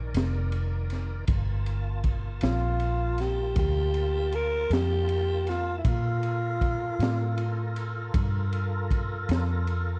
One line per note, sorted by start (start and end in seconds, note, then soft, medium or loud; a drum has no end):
0.00 0.11 A#1 medium
0.00 1.25 D#3 medium
0.00 1.25 A#4 medium
0.00 1.25 D5 medium
0.14 1.25 F1 medium
0.14 snare loud
0.14 ride medium
0.52 ride medium
0.90 snare soft
0.90 ride medium
1.27 2.39 G1 medium
1.27 5.82 A#3 medium
1.27 5.81 F4 medium
1.27 5.81 A5 medium
1.27 kick loud
1.27 ride medium
1.66 ride medium
2.04 kick medium
2.04 ride medium
2.41 3.54 A#1 medium
2.41 3.21 F4 medium
2.41 snare loud
2.41 ride medium
2.80 ride medium
3.18 3.58 G4 medium
3.18 snare soft
3.18 ride medium
3.56 4.67 D2 medium
3.56 4.36 G4 loud
3.56 kick loud
3.56 ride medium
3.94 ride medium
4.32 4.74 A#4 loud
4.32 ride medium
4.70 5.82 F2 medium
4.70 5.50 G4 loud
4.70 snare loud
4.70 ride medium
5.09 ride medium
5.47 5.77 F4 medium
5.47 snare soft
5.47 ride medium
5.77 5.90 E4 medium
5.85 6.96 A#2 medium
5.85 9.99 F4 medium
5.85 9.99 A4 medium
5.85 9.99 A#4 medium
5.85 kick loud
5.85 ride medium
5.89 8.16 F4 medium
6.23 ride medium
6.61 kick medium
6.61 ride medium
6.99 8.11 A2 medium
6.99 snare loud
6.99 ride medium
7.38 ride medium
7.76 ride medium
8.14 9.25 G2 medium
8.14 kick loud
8.14 ride medium
8.53 ride medium
8.91 kick medium
8.91 ride medium
9.29 9.99 F2 medium
9.29 snare loud
9.29 ride medium
9.67 ride medium